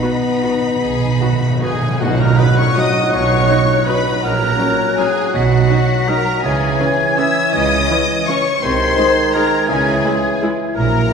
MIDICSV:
0, 0, Header, 1, 13, 480
1, 0, Start_track
1, 0, Key_signature, 5, "major"
1, 0, Tempo, 399734
1, 983, Time_signature, 3, 2, 24, 8
1, 1945, Tempo, 381679
1, 3385, Tempo, 367422
1, 10585, Tempo, 355030
1, 14443, End_track
2, 0, Start_track
2, 0, Title_t, "Flute"
2, 0, Program_c, 0, 73
2, 2437, Note_on_c, 0, 90, 71
2, 5254, Note_off_c, 0, 90, 0
2, 5311, Note_on_c, 0, 90, 66
2, 6763, Note_on_c, 0, 95, 68
2, 6783, Note_off_c, 0, 90, 0
2, 8196, Note_on_c, 0, 92, 74
2, 8215, Note_off_c, 0, 95, 0
2, 10706, Note_off_c, 0, 92, 0
2, 11054, Note_on_c, 0, 92, 75
2, 13897, Note_off_c, 0, 92, 0
2, 14443, End_track
3, 0, Start_track
3, 0, Title_t, "Violin section"
3, 0, Program_c, 1, 48
3, 0, Note_on_c, 1, 83, 84
3, 1892, Note_off_c, 1, 83, 0
3, 1946, Note_on_c, 1, 80, 82
3, 2397, Note_off_c, 1, 80, 0
3, 2432, Note_on_c, 1, 78, 78
3, 2662, Note_off_c, 1, 78, 0
3, 2670, Note_on_c, 1, 82, 87
3, 2908, Note_off_c, 1, 82, 0
3, 2913, Note_on_c, 1, 83, 98
3, 3152, Note_off_c, 1, 83, 0
3, 3158, Note_on_c, 1, 85, 94
3, 3386, Note_off_c, 1, 85, 0
3, 3386, Note_on_c, 1, 87, 95
3, 3855, Note_off_c, 1, 87, 0
3, 3856, Note_on_c, 1, 85, 95
3, 4812, Note_off_c, 1, 85, 0
3, 4836, Note_on_c, 1, 83, 97
3, 5296, Note_off_c, 1, 83, 0
3, 5305, Note_on_c, 1, 82, 102
3, 6273, Note_off_c, 1, 82, 0
3, 6280, Note_on_c, 1, 80, 88
3, 6750, Note_on_c, 1, 78, 87
3, 6752, Note_off_c, 1, 80, 0
3, 7699, Note_off_c, 1, 78, 0
3, 7720, Note_on_c, 1, 82, 101
3, 8186, Note_off_c, 1, 82, 0
3, 8191, Note_on_c, 1, 80, 83
3, 9150, Note_off_c, 1, 80, 0
3, 9151, Note_on_c, 1, 88, 96
3, 9611, Note_off_c, 1, 88, 0
3, 9612, Note_on_c, 1, 87, 114
3, 10566, Note_off_c, 1, 87, 0
3, 10585, Note_on_c, 1, 85, 102
3, 11048, Note_on_c, 1, 84, 108
3, 11050, Note_off_c, 1, 85, 0
3, 12024, Note_off_c, 1, 84, 0
3, 12026, Note_on_c, 1, 82, 97
3, 12496, Note_off_c, 1, 82, 0
3, 12497, Note_on_c, 1, 80, 88
3, 13459, Note_off_c, 1, 80, 0
3, 13948, Note_on_c, 1, 82, 89
3, 14443, Note_off_c, 1, 82, 0
3, 14443, End_track
4, 0, Start_track
4, 0, Title_t, "Clarinet"
4, 0, Program_c, 2, 71
4, 2439, Note_on_c, 2, 75, 75
4, 5256, Note_off_c, 2, 75, 0
4, 5316, Note_on_c, 2, 73, 73
4, 6757, Note_on_c, 2, 75, 66
4, 6777, Note_off_c, 2, 73, 0
4, 8184, Note_off_c, 2, 75, 0
4, 8192, Note_on_c, 2, 73, 67
4, 10652, Note_off_c, 2, 73, 0
4, 11064, Note_on_c, 2, 72, 69
4, 12501, Note_on_c, 2, 73, 71
4, 12522, Note_off_c, 2, 72, 0
4, 13952, Note_off_c, 2, 73, 0
4, 14443, End_track
5, 0, Start_track
5, 0, Title_t, "Oboe"
5, 0, Program_c, 3, 68
5, 1948, Note_on_c, 3, 68, 68
5, 2398, Note_off_c, 3, 68, 0
5, 2436, Note_on_c, 3, 66, 66
5, 2538, Note_off_c, 3, 66, 0
5, 2676, Note_on_c, 3, 70, 82
5, 2920, Note_on_c, 3, 71, 85
5, 2939, Note_off_c, 3, 70, 0
5, 3169, Note_on_c, 3, 73, 74
5, 3188, Note_off_c, 3, 71, 0
5, 3406, Note_on_c, 3, 75, 83
5, 3426, Note_off_c, 3, 73, 0
5, 3883, Note_on_c, 3, 73, 88
5, 3902, Note_off_c, 3, 75, 0
5, 4857, Note_on_c, 3, 71, 74
5, 4876, Note_off_c, 3, 73, 0
5, 5311, Note_off_c, 3, 71, 0
5, 5319, Note_on_c, 3, 70, 92
5, 6282, Note_on_c, 3, 68, 74
5, 6301, Note_off_c, 3, 70, 0
5, 6750, Note_on_c, 3, 66, 85
5, 6769, Note_off_c, 3, 68, 0
5, 7723, Note_on_c, 3, 70, 81
5, 7742, Note_off_c, 3, 66, 0
5, 8169, Note_off_c, 3, 70, 0
5, 8177, Note_on_c, 3, 68, 77
5, 9124, Note_off_c, 3, 68, 0
5, 9163, Note_on_c, 3, 76, 83
5, 9607, Note_on_c, 3, 75, 96
5, 9627, Note_off_c, 3, 76, 0
5, 10238, Note_off_c, 3, 75, 0
5, 10593, Note_on_c, 3, 73, 82
5, 11022, Note_off_c, 3, 73, 0
5, 11060, Note_on_c, 3, 72, 97
5, 12030, Note_on_c, 3, 70, 81
5, 12051, Note_off_c, 3, 72, 0
5, 12501, Note_on_c, 3, 68, 86
5, 12521, Note_off_c, 3, 70, 0
5, 13480, Note_off_c, 3, 68, 0
5, 13941, Note_on_c, 3, 70, 89
5, 14443, Note_off_c, 3, 70, 0
5, 14443, End_track
6, 0, Start_track
6, 0, Title_t, "Violin section"
6, 0, Program_c, 4, 48
6, 20, Note_on_c, 4, 59, 66
6, 932, Note_off_c, 4, 59, 0
6, 975, Note_on_c, 4, 68, 76
6, 1443, Note_on_c, 4, 66, 62
6, 1452, Note_off_c, 4, 68, 0
6, 1939, Note_off_c, 4, 66, 0
6, 1942, Note_on_c, 4, 68, 69
6, 2394, Note_off_c, 4, 68, 0
6, 2438, Note_on_c, 4, 66, 70
6, 2660, Note_off_c, 4, 66, 0
6, 2661, Note_on_c, 4, 70, 81
6, 2904, Note_off_c, 4, 70, 0
6, 2908, Note_on_c, 4, 71, 82
6, 3150, Note_off_c, 4, 71, 0
6, 3154, Note_on_c, 4, 73, 79
6, 3386, Note_on_c, 4, 75, 79
6, 3389, Note_off_c, 4, 73, 0
6, 3855, Note_off_c, 4, 75, 0
6, 3864, Note_on_c, 4, 73, 86
6, 4816, Note_off_c, 4, 73, 0
6, 4821, Note_on_c, 4, 71, 75
6, 5298, Note_off_c, 4, 71, 0
6, 5301, Note_on_c, 4, 70, 75
6, 6271, Note_off_c, 4, 70, 0
6, 6274, Note_on_c, 4, 68, 77
6, 6749, Note_off_c, 4, 68, 0
6, 6752, Note_on_c, 4, 66, 80
6, 7707, Note_on_c, 4, 70, 79
6, 7719, Note_off_c, 4, 66, 0
6, 8169, Note_off_c, 4, 70, 0
6, 8180, Note_on_c, 4, 68, 68
6, 9125, Note_off_c, 4, 68, 0
6, 9143, Note_on_c, 4, 76, 78
6, 9597, Note_off_c, 4, 76, 0
6, 9597, Note_on_c, 4, 75, 90
6, 10578, Note_off_c, 4, 75, 0
6, 10586, Note_on_c, 4, 73, 78
6, 11041, Note_off_c, 4, 73, 0
6, 11047, Note_on_c, 4, 72, 84
6, 12004, Note_off_c, 4, 72, 0
6, 12028, Note_on_c, 4, 70, 77
6, 12488, Note_off_c, 4, 70, 0
6, 12488, Note_on_c, 4, 68, 72
6, 13454, Note_off_c, 4, 68, 0
6, 13942, Note_on_c, 4, 70, 83
6, 14443, Note_off_c, 4, 70, 0
6, 14443, End_track
7, 0, Start_track
7, 0, Title_t, "French horn section"
7, 0, Program_c, 5, 60
7, 0, Note_on_c, 5, 59, 79
7, 2195, Note_off_c, 5, 59, 0
7, 2430, Note_on_c, 5, 63, 79
7, 2434, Note_on_c, 5, 54, 83
7, 5251, Note_off_c, 5, 63, 0
7, 5253, Note_off_c, 5, 54, 0
7, 5307, Note_on_c, 5, 54, 77
7, 5312, Note_on_c, 5, 61, 76
7, 6753, Note_off_c, 5, 61, 0
7, 6755, Note_on_c, 5, 63, 74
7, 8134, Note_off_c, 5, 54, 0
7, 8158, Note_off_c, 5, 63, 0
7, 8193, Note_on_c, 5, 61, 80
7, 8197, Note_on_c, 5, 52, 80
7, 11003, Note_off_c, 5, 52, 0
7, 11054, Note_off_c, 5, 61, 0
7, 11062, Note_on_c, 5, 63, 74
7, 11063, Note_on_c, 5, 56, 78
7, 12473, Note_off_c, 5, 63, 0
7, 12489, Note_on_c, 5, 64, 76
7, 13940, Note_on_c, 5, 54, 73
7, 13956, Note_off_c, 5, 56, 0
7, 14443, Note_off_c, 5, 54, 0
7, 14443, Note_off_c, 5, 64, 0
7, 14443, End_track
8, 0, Start_track
8, 0, Title_t, "Viola section"
8, 0, Program_c, 6, 48
8, 25, Note_on_c, 6, 59, 51
8, 25, Note_on_c, 6, 66, 51
8, 121, Note_off_c, 6, 59, 0
8, 121, Note_off_c, 6, 66, 0
8, 517, Note_on_c, 6, 66, 52
8, 519, Note_on_c, 6, 59, 52
8, 613, Note_off_c, 6, 66, 0
8, 615, Note_off_c, 6, 59, 0
8, 1454, Note_on_c, 6, 59, 50
8, 1456, Note_on_c, 6, 66, 52
8, 1550, Note_off_c, 6, 59, 0
8, 1552, Note_off_c, 6, 66, 0
8, 1935, Note_on_c, 6, 66, 47
8, 1941, Note_on_c, 6, 59, 51
8, 2036, Note_off_c, 6, 66, 0
8, 2042, Note_off_c, 6, 59, 0
8, 2908, Note_on_c, 6, 54, 62
8, 2912, Note_on_c, 6, 63, 60
8, 3008, Note_off_c, 6, 54, 0
8, 3013, Note_off_c, 6, 63, 0
8, 3392, Note_on_c, 6, 54, 60
8, 3395, Note_on_c, 6, 63, 56
8, 3497, Note_off_c, 6, 54, 0
8, 3500, Note_off_c, 6, 63, 0
8, 4345, Note_on_c, 6, 54, 62
8, 4348, Note_on_c, 6, 63, 60
8, 4450, Note_off_c, 6, 54, 0
8, 4453, Note_off_c, 6, 63, 0
8, 4835, Note_on_c, 6, 54, 58
8, 4838, Note_on_c, 6, 63, 58
8, 4939, Note_off_c, 6, 54, 0
8, 4943, Note_off_c, 6, 63, 0
8, 5770, Note_on_c, 6, 61, 59
8, 5771, Note_on_c, 6, 54, 57
8, 5875, Note_off_c, 6, 61, 0
8, 5876, Note_off_c, 6, 54, 0
8, 6272, Note_on_c, 6, 61, 61
8, 6275, Note_on_c, 6, 54, 59
8, 6376, Note_off_c, 6, 61, 0
8, 6379, Note_off_c, 6, 54, 0
8, 7224, Note_on_c, 6, 63, 60
8, 7226, Note_on_c, 6, 54, 61
8, 7329, Note_off_c, 6, 63, 0
8, 7330, Note_off_c, 6, 54, 0
8, 7719, Note_on_c, 6, 63, 59
8, 7721, Note_on_c, 6, 54, 58
8, 7824, Note_off_c, 6, 63, 0
8, 7826, Note_off_c, 6, 54, 0
8, 8655, Note_on_c, 6, 52, 61
8, 8657, Note_on_c, 6, 61, 60
8, 8760, Note_off_c, 6, 52, 0
8, 8761, Note_off_c, 6, 61, 0
8, 9148, Note_on_c, 6, 61, 59
8, 9149, Note_on_c, 6, 52, 56
8, 9253, Note_off_c, 6, 61, 0
8, 9254, Note_off_c, 6, 52, 0
8, 10095, Note_on_c, 6, 61, 60
8, 10096, Note_on_c, 6, 52, 67
8, 10200, Note_off_c, 6, 61, 0
8, 10201, Note_off_c, 6, 52, 0
8, 10592, Note_on_c, 6, 52, 61
8, 10594, Note_on_c, 6, 61, 59
8, 10701, Note_off_c, 6, 52, 0
8, 10702, Note_off_c, 6, 61, 0
8, 11533, Note_on_c, 6, 63, 65
8, 11535, Note_on_c, 6, 56, 61
8, 11641, Note_off_c, 6, 63, 0
8, 11643, Note_off_c, 6, 56, 0
8, 12031, Note_on_c, 6, 63, 56
8, 12033, Note_on_c, 6, 56, 57
8, 12139, Note_off_c, 6, 63, 0
8, 12142, Note_off_c, 6, 56, 0
8, 12973, Note_on_c, 6, 64, 64
8, 12975, Note_on_c, 6, 56, 61
8, 13081, Note_off_c, 6, 64, 0
8, 13083, Note_off_c, 6, 56, 0
8, 13483, Note_on_c, 6, 64, 57
8, 13484, Note_on_c, 6, 56, 61
8, 13591, Note_off_c, 6, 64, 0
8, 13592, Note_off_c, 6, 56, 0
8, 14443, End_track
9, 0, Start_track
9, 0, Title_t, "Bassoon"
9, 0, Program_c, 7, 70
9, 2435, Note_on_c, 7, 54, 81
9, 5253, Note_off_c, 7, 54, 0
9, 5305, Note_on_c, 7, 54, 73
9, 8132, Note_off_c, 7, 54, 0
9, 8191, Note_on_c, 7, 52, 74
9, 10652, Note_off_c, 7, 52, 0
9, 11056, Note_on_c, 7, 51, 79
9, 12495, Note_on_c, 7, 52, 75
9, 12515, Note_off_c, 7, 51, 0
9, 13949, Note_off_c, 7, 52, 0
9, 14443, End_track
10, 0, Start_track
10, 0, Title_t, "Cello section"
10, 0, Program_c, 8, 48
10, 0, Note_on_c, 8, 63, 63
10, 2144, Note_off_c, 8, 63, 0
10, 2431, Note_on_c, 8, 47, 85
10, 2822, Note_off_c, 8, 47, 0
10, 3856, Note_on_c, 8, 47, 82
10, 4250, Note_off_c, 8, 47, 0
10, 5306, Note_on_c, 8, 46, 78
10, 5691, Note_off_c, 8, 46, 0
10, 6741, Note_on_c, 8, 47, 79
10, 7135, Note_off_c, 8, 47, 0
10, 8187, Note_on_c, 8, 49, 83
10, 8575, Note_off_c, 8, 49, 0
10, 9615, Note_on_c, 8, 49, 82
10, 10006, Note_off_c, 8, 49, 0
10, 11053, Note_on_c, 8, 48, 78
10, 11444, Note_off_c, 8, 48, 0
10, 12498, Note_on_c, 8, 49, 82
10, 12892, Note_off_c, 8, 49, 0
10, 13946, Note_on_c, 8, 46, 82
10, 14339, Note_off_c, 8, 46, 0
10, 14443, End_track
11, 0, Start_track
11, 0, Title_t, "Timpani"
11, 0, Program_c, 10, 47
11, 25, Note_on_c, 10, 47, 36
11, 114, Note_off_c, 10, 47, 0
11, 129, Note_on_c, 10, 47, 38
11, 215, Note_off_c, 10, 47, 0
11, 230, Note_on_c, 10, 47, 40
11, 314, Note_off_c, 10, 47, 0
11, 329, Note_on_c, 10, 47, 38
11, 416, Note_off_c, 10, 47, 0
11, 431, Note_on_c, 10, 47, 41
11, 518, Note_off_c, 10, 47, 0
11, 533, Note_on_c, 10, 47, 41
11, 619, Note_off_c, 10, 47, 0
11, 633, Note_on_c, 10, 47, 45
11, 709, Note_off_c, 10, 47, 0
11, 724, Note_on_c, 10, 47, 54
11, 810, Note_off_c, 10, 47, 0
11, 825, Note_on_c, 10, 47, 50
11, 897, Note_off_c, 10, 47, 0
11, 912, Note_on_c, 10, 47, 52
11, 990, Note_off_c, 10, 47, 0
11, 1005, Note_on_c, 10, 47, 53
11, 1082, Note_off_c, 10, 47, 0
11, 1097, Note_on_c, 10, 47, 52
11, 1174, Note_off_c, 10, 47, 0
11, 1188, Note_on_c, 10, 47, 55
11, 1270, Note_off_c, 10, 47, 0
11, 1284, Note_on_c, 10, 47, 58
11, 1368, Note_off_c, 10, 47, 0
11, 1382, Note_on_c, 10, 47, 61
11, 1473, Note_off_c, 10, 47, 0
11, 1488, Note_on_c, 10, 47, 70
11, 1575, Note_off_c, 10, 47, 0
11, 1589, Note_on_c, 10, 47, 76
11, 1678, Note_off_c, 10, 47, 0
11, 1693, Note_on_c, 10, 47, 71
11, 1777, Note_off_c, 10, 47, 0
11, 1791, Note_on_c, 10, 47, 70
11, 1877, Note_off_c, 10, 47, 0
11, 1891, Note_on_c, 10, 47, 71
11, 1967, Note_off_c, 10, 47, 0
11, 1982, Note_on_c, 10, 47, 81
11, 2072, Note_off_c, 10, 47, 0
11, 2087, Note_on_c, 10, 47, 87
11, 2174, Note_off_c, 10, 47, 0
11, 2189, Note_on_c, 10, 47, 84
11, 2272, Note_off_c, 10, 47, 0
11, 2287, Note_on_c, 10, 47, 95
11, 2378, Note_off_c, 10, 47, 0
11, 2430, Note_on_c, 10, 47, 92
11, 3098, Note_off_c, 10, 47, 0
11, 6750, Note_on_c, 10, 47, 89
11, 7421, Note_off_c, 10, 47, 0
11, 14443, End_track
12, 0, Start_track
12, 0, Title_t, "Double bass section"
12, 0, Program_c, 11, 48
12, 987, Note_on_c, 11, 35, 72
12, 1375, Note_off_c, 11, 35, 0
12, 2437, Note_on_c, 11, 35, 83
12, 2826, Note_off_c, 11, 35, 0
12, 3860, Note_on_c, 11, 35, 82
12, 4253, Note_off_c, 11, 35, 0
12, 5307, Note_on_c, 11, 34, 86
12, 5692, Note_off_c, 11, 34, 0
12, 6754, Note_on_c, 11, 35, 83
12, 7142, Note_off_c, 11, 35, 0
12, 8193, Note_on_c, 11, 37, 87
12, 8578, Note_off_c, 11, 37, 0
12, 9620, Note_on_c, 11, 37, 86
12, 10009, Note_off_c, 11, 37, 0
12, 11057, Note_on_c, 11, 36, 86
12, 11446, Note_off_c, 11, 36, 0
12, 12501, Note_on_c, 11, 37, 87
12, 12893, Note_off_c, 11, 37, 0
12, 13949, Note_on_c, 11, 34, 90
12, 14340, Note_off_c, 11, 34, 0
12, 14443, End_track
13, 0, Start_track
13, 0, Title_t, "Tam-tam"
13, 2436, Note_on_c, 9, 52, 65
13, 2562, Note_off_c, 9, 52, 0
13, 14443, End_track
0, 0, End_of_file